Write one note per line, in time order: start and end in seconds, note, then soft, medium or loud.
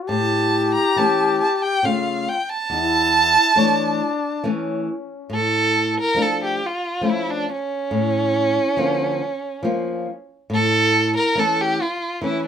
0.02 0.09 F#4 medium
0.07 0.75 A2 medium
0.07 1.83 G4 loud
0.07 0.70 A5 medium
0.75 0.98 A#5 loud
0.96 1.40 E3 medium
0.96 1.41 A3 medium
0.96 1.41 C#4 medium
0.96 1.40 A5 medium
1.41 1.56 A5 medium
1.57 1.64 A5 medium
1.62 1.86 G5 loud
1.83 2.27 C#3 medium
1.83 2.27 A3 medium
1.83 2.28 C#4 medium
1.83 2.39 F4 medium
1.83 2.30 F5 medium
2.28 2.51 G5 medium
2.49 4.45 A5 loud
2.70 3.36 E2 medium
2.70 3.54 E4 medium
3.56 4.00 E3 medium
3.56 4.01 A3 medium
3.56 4.46 D4 medium
3.56 4.01 C#5 medium
4.44 4.88 E3 medium
4.44 4.88 A3 medium
4.44 5.32 C#4 medium
4.44 4.88 C#4 medium
5.30 5.96 A2 medium
5.34 5.94 A4 loud
6.00 6.23 A#4 loud
6.14 6.60 F3 medium
6.14 6.60 A3 medium
6.14 6.61 D4 medium
6.22 6.42 A4 medium
6.44 6.67 G4 medium
6.66 7.11 F4 medium
7.01 7.47 F3 medium
7.01 7.47 A3 medium
7.01 7.47 C#4 medium
7.09 7.32 E4 medium
7.30 7.50 D4 medium
7.53 10.06 C#4 loud
7.91 8.56 A2 medium
8.77 9.21 D3 medium
8.77 9.21 F3 medium
8.77 9.21 A#3 medium
9.63 10.07 F3 medium
9.63 10.07 A#3 medium
9.63 10.08 F4 medium
10.50 11.15 A2 medium
10.54 11.13 A4 loud
11.17 11.40 A#4 loud
11.35 11.79 E3 medium
11.35 11.79 A3 medium
11.35 11.80 C#4 medium
11.35 11.62 A4 medium
11.61 11.83 G4 loud
11.81 12.23 F4 medium
12.21 12.47 E3 medium
12.21 12.47 A3 medium
12.21 12.47 C#4 medium
12.21 12.43 E4 medium